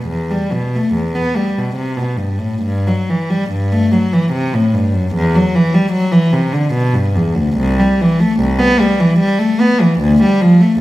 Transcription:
0.07 E2
0.31 G3
0.52 B2
0.75 A3
0.94 E2
1.15 B3
1.36 G3
1.58 B2
1.76 C3
1.97 B2
2.17 G2
2.39 A2
2.62 G2
2.87 F#3
3.10 E3
3.30 G3
3.51 G2
3.72 A3
3.92 F#3
4.13 E3
4.33 C3
4.54 A2
4.73 G2
4.93 F#2
5.15 E2
5.35 F#3
5.55 E3
5.74 G3
5.92 F#3
6.12 E3
6.33 C3
6.53 D3
6.74 B2
6.93 G2
7.16 E2
7.35 D2
7.57 C2
7.80 G3
8.01 E3
8.20 A3
8.40 C2
8.59 B3
8.80 G3
9.00 E3
9.19 G3
9.39 A3
9.60 B3
9.81 E3
10.00 D2
10.23 G3
10.41 F3
10.61 A3

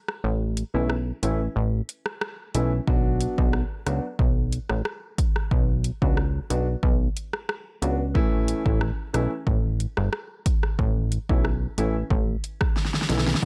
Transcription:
0.08 cross-stick
0.24 A1
0.57 closed hi-hat
0.74 B1 E3 A3 C#4 E4
0.90 cross-stick
1.23 A1 E3 A3 C#4 E4, closed hi-hat
1.56 A1
1.89 closed hi-hat
2.06 cross-stick
2.21 cross-stick
2.54 B1 E3 A3 C#4 E4, closed hi-hat
2.87 B1 F#3 B3 D4 F#4, kick
3.21 closed hi-hat
3.38 B1 F#3 B3 D4 F#4, kick
3.53 cross-stick
3.86 C#2 F#3 B3 D4 F#4, cross-stick, closed hi-hat
4.19 B1, kick
4.52 closed hi-hat
4.70 A1, cross-stick
4.85 cross-stick
5.18 kick, closed hi-hat
5.36 cross-stick
5.51 B1, kick
5.84 closed hi-hat
6.01 C#2 F#3 B3 D4 F#4, kick
6.17 cross-stick
6.50 B1 F#3 B3 D4 F#4, closed hi-hat
6.83 B1, kick
7.17 closed hi-hat
7.33 cross-stick
7.49 cross-stick
7.82 C#2 F#3 B3 D4 F#4, closed hi-hat
8.14 A1 E3 A3 C#4 E4, kick
8.48 closed hi-hat
8.65 A1 E3 A3 C#4 E4, kick
8.81 cross-stick
9.13 B1 E3 A3 C#4 E4, cross-stick, closed hi-hat
9.47 A1, kick
9.80 closed hi-hat
9.97 G1, cross-stick
10.13 cross-stick
10.46 kick, closed hi-hat
10.63 cross-stick
10.79 A1, kick
11.12 closed hi-hat
11.29 B1 E3 A3 C#4 E4, kick
11.45 cross-stick
11.78 A1 E3 A3 C#4 E4, closed hi-hat
12.10 A1, kick
12.44 closed hi-hat
12.61 kick, cross-stick
12.76 snare
12.85 snare
12.94 snare
13.02 snare
13.09 B1 E3 A3 C#4 E4, snare, closed hi-hat
13.18 snare
13.27 snare
13.35 snare

